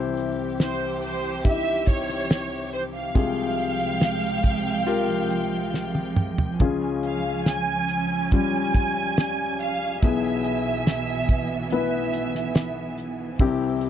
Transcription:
0.00 3.11 C2 medium
0.00 3.11 C3 medium
0.00 3.12 C3 medium
0.00 3.12 E3 medium
0.00 1.36 E4 medium
0.00 1.36 G4 medium
0.00 3.12 G4 medium
0.00 1.37 C5 medium
0.17 closed hi-hat medium
0.60 1.00 C5 medium
0.60 snare medium
0.60 closed hi-hat medium
1.02 1.43 C5 medium
1.02 closed hi-hat medium
1.44 1.51 D#4 soft
1.44 3.06 G4 medium
1.44 3.07 E5 medium
1.44 1.86 E5 medium
1.44 kick medium
1.44 closed hi-hat medium
1.51 3.10 E4 medium
1.87 2.73 C#5 medium
1.87 kick medium
1.87 closed hi-hat medium
2.09 snare soft
2.30 snare loud
2.30 closed hi-hat medium
2.73 2.83 C5 medium
2.73 closed hi-hat medium
2.95 6.14 F5 loud
3.15 6.56 C2 medium
3.15 6.56 C3 medium
3.15 9.98 F3 medium
3.15 6.56 G#3 medium
3.15 4.78 F4 medium
3.15 4.78 G4 medium
3.15 4.78 G#4 medium
3.15 6.56 G5 medium
3.15 kick loud
3.15 closed hi-hat medium
3.58 closed hi-hat medium
4.01 snare medium
4.01 closed hi-hat medium
4.44 kick medium
4.44 closed hi-hat medium
4.86 6.51 F4 medium
4.86 6.51 G4 medium
4.86 6.51 A#4 medium
4.86 closed hi-hat medium
5.30 closed hi-hat medium
5.74 snare soft
5.95 high tom soft
6.16 mid tom medium
6.38 floor tom medium
6.60 9.99 C#2 medium
6.60 9.99 C#3 medium
6.60 8.23 C#4 medium
6.60 9.99 C#4 medium
6.60 8.24 F4 medium
6.60 8.24 G#4 medium
6.60 13.36 G#5 medium
6.60 kick loud
6.60 closed hi-hat medium
7.03 7.45 F5 medium
7.03 closed hi-hat medium
7.46 8.33 G#5 medium
7.46 snare medium
7.46 closed hi-hat medium
7.89 closed hi-hat medium
8.32 9.95 G3 medium
8.32 9.94 C#4 medium
8.32 9.94 F4 medium
8.32 9.57 G#5 loud
8.32 kick medium
8.32 closed hi-hat medium
8.74 kick medium
8.74 closed hi-hat medium
9.17 snare loud
9.17 closed hi-hat medium
9.60 10.00 F5 medium
9.60 closed hi-hat medium
10.03 13.36 B1 medium
10.03 13.37 B2 medium
10.03 13.36 B2 medium
10.03 13.90 E3 medium
10.03 11.63 B3 medium
10.03 13.37 B3 medium
10.03 11.64 E4 medium
10.03 11.64 G#4 medium
10.03 11.71 E5 medium
10.03 kick loud
10.03 closed hi-hat medium
10.44 closed hi-hat medium
10.87 snare medium
10.87 closed hi-hat medium
11.29 kick medium
11.29 closed hi-hat medium
11.70 13.32 B3 medium
11.70 13.32 E4 medium
11.70 13.32 B4 medium
11.70 12.94 E5 medium
11.70 closed hi-hat medium
12.13 closed hi-hat medium
12.35 snare soft
12.55 snare loud
12.55 closed hi-hat medium
12.98 closed hi-hat medium
13.39 13.90 C2 medium
13.39 13.90 C3 medium
13.39 13.90 C4 medium
13.39 13.90 E4 medium
13.39 13.90 G4 medium
13.39 kick loud
13.39 closed hi-hat medium
13.81 closed hi-hat medium

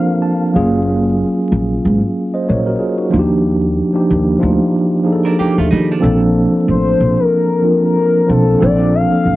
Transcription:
0.00 0.55 F3 medium
0.00 0.54 A#3 medium
0.00 0.55 C4 medium
0.00 0.55 D4 medium
0.00 0.55 F4 medium
0.00 0.55 A4 medium
0.00 0.54 A#4 medium
0.00 0.55 C5 medium
0.00 0.54 F5 loud
0.22 0.51 A5 medium
0.54 1.22 F#1 medium
0.54 1.61 F#3 medium
0.54 1.62 A#3 medium
0.54 1.62 C#4 medium
0.54 1.62 F4 medium
0.54 1.63 G#4 loud
0.54 0.84 F5 medium
1.52 1.77 A#1 medium
1.85 1.99 G#1 medium
2.34 2.47 C5 soft
2.34 2.46 D#5 medium
2.49 2.74 A#1 medium
2.49 2.65 A#4 medium
2.49 2.66 C#5 medium
2.66 2.79 F#4 medium
2.66 2.78 A#4 medium
2.79 2.97 F4 soft
2.79 2.97 G#4 medium
2.98 3.11 D#4 soft
2.98 3.28 F#4 medium
3.10 3.80 D#2 medium
3.10 3.77 F3 medium
3.10 3.78 A#3 medium
3.10 3.78 D4 medium
3.10 3.78 D#4 medium
3.10 3.19 F4 medium
3.19 3.82 G4 medium
3.93 4.32 F3 medium
3.93 4.32 A#3 medium
3.93 4.33 D4 medium
3.93 4.33 D#4 medium
3.93 4.34 G4 medium
4.10 4.35 D#2 medium
4.39 4.57 D2 medium
4.39 4.95 F3 medium
4.39 4.95 A#3 medium
4.39 4.95 D4 medium
4.39 4.96 D#4 medium
4.39 4.96 F4 medium
5.03 5.86 F3 medium
5.03 5.87 A#3 medium
5.03 5.87 D4 medium
5.03 5.87 D#4 medium
5.03 5.13 G#4 medium
5.13 5.91 A4 medium
5.25 5.37 D4 medium
5.25 5.37 A#4 medium
5.39 5.56 A#3 medium
5.39 5.56 G4 medium
5.39 muted upright bass stroke soft
5.58 5.68 D#2 medium
5.58 5.70 A3 medium
5.58 5.70 F4 medium
5.71 5.97 D#3 medium
5.71 5.89 G3 medium
5.71 5.88 D#4 medium
5.92 6.21 F3 medium
5.92 6.20 D4 medium
6.00 6.44 A#1 medium
6.00 7.09 F3 medium
6.00 7.09 A#3 medium
6.00 7.09 C4 medium
6.00 7.10 D4 medium
6.00 7.10 A4 loud
6.68 6.93 A1 medium
6.68 7.21 C5 medium
7.00 7.15 A#1 medium
7.20 7.83 A#4 medium
7.62 8.17 F3 medium
7.62 8.18 A#3 medium
7.62 8.18 C4 medium
7.62 8.18 D4 medium
7.62 8.19 F4 medium
7.85 8.32 A#4 medium
8.26 8.55 B1 medium
8.26 8.54 F3 medium
8.26 8.55 A#3 medium
8.26 8.55 C4 medium
8.26 8.55 D4 medium
8.26 8.56 F4 medium
8.26 8.64 A4 medium
8.58 9.02 A#1 loud
8.58 9.00 F3 medium
8.58 9.00 A#3 medium
8.58 9.01 C4 medium
8.58 9.01 D4 medium
8.58 9.01 A4 medium
8.63 8.96 D5 medium
8.94 9.36 F5 loud
9.10 9.36 F3 medium
9.10 9.36 A#3 medium
9.10 9.36 C4 medium
9.10 9.36 D4 medium
9.10 9.36 A4 medium
9.25 9.36 A1 medium

